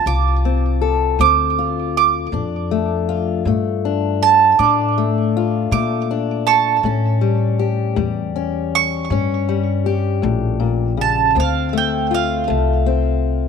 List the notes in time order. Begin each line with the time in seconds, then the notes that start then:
Already playing: C4
0.06 C2 D2 F4 D6
0.45 C4
0.81 A4
1.19 D2 C4 D6
1.59 F4
1.97 D6
2.32 F2 A#2 D4
2.71 A3
3.09 F4
3.45 G2 A#2 A3
3.85 D4
4.23 A5
4.59 A2 D4 D6
4.98 A3
5.37 F4
5.71 A#2 A3 D6
6.11 D4
6.47 A5 C#6
6.83 A2 C#4
7.21 G3
7.59 G4
7.96 E2 A2 G3
8.36 C#4
8.75 C#6
9.10 G2 A2 C#4
9.49 G3
9.86 G4
10.22 A#1 A2
10.60 A#2
10.97 C#3 A5
11.35 D2 C4
11.40 F5
11.73 A3
11.78 G5
12.11 F4 F5
12.47 C2 D2 A3
12.86 C4